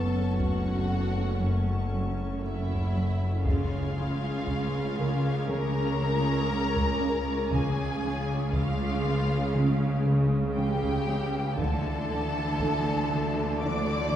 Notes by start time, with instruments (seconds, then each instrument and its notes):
Already playing: double bass section F#1, synth drone F#1, cello section F#2, viola section A3 C#4, felt piano B3 B4 A5, violin section A4 A5 C#6, glass harmonica A4 C#5 F#5
0.39 cello section F#2, violin section F#4 F#5, taiko
0.91 cello section F#2
1.41 cello section F#2
1.93 cello section F#2
2.43 cello section F#2, violin section E4 E5
2.69 taiko
2.95 cello section F#3
3.45 synth drone C#2, double bass section C#2, cello section C#3, viola section G#3 C#4, glass harmonica C#4 G#4 G#5, violin section F4 F5 C#6 G#6, taiko
3.97 cello section C#3
4.47 cello section C#3, violin section D6, taiko
4.98 cello section C#3, felt piano A#4
5.48 cello section C#3, violin section A#4 A#5
6.00 cello section C#3
6.51 cello section C#3
6.75 taiko
7.01 cello section C#4
7.50 synth drone C#2, double bass section C#2, cello section C#3, viola section G#3 C#4, glass harmonica C#4 F5, violin section G#4 G#5, taiko
7.63 violin section A6
8.03 cello section C#3
8.53 cello section C#3, violin section F4 F5, taiko
9.04 cello section C#3
9.40 violin section D#6
9.55 cello section C#3
10.06 cello section C#3
10.56 cello section C#3, violin section G4 G5
10.82 taiko
11.08 cello section C#4
11.57 synth drone D2, double bass section D2, cello section D3, viola section E3 A3, glass harmonica A4 E5 A5, violin section A4 A5, taiko
12.10 cello section D3
12.60 cello section D3, taiko
13.11 cello section D3
13.60 cello section D3, violin section D5 D6
14.12 cello section D3